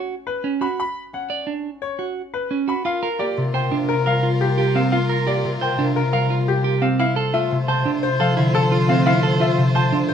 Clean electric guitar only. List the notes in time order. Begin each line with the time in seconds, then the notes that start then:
Already playing: F#4
0.44 C#4
0.61 F#4
1.30 D5
1.47 D4
1.99 F#4
2.51 C#4
2.68 F#4
2.85 F4
3.03 A#4
3.20 G4
3.54 C5
3.71 D4
4.06 A#4
4.23 F4
4.58 G4
4.75 C4
4.93 F4
5.09 A#4
5.27 G4
5.61 C5
5.79 D4
6.13 A#4
6.30 F4
6.64 G4
6.82 C4
6.99 E4
7.16 A4
7.34 F4
7.68 C5
7.85 D4
8.20 A4
8.37 E4
8.54 A4
8.72 F4
8.89 C4
9.06 E4
9.23 A4
9.40 F4
9.75 C5
9.92 D4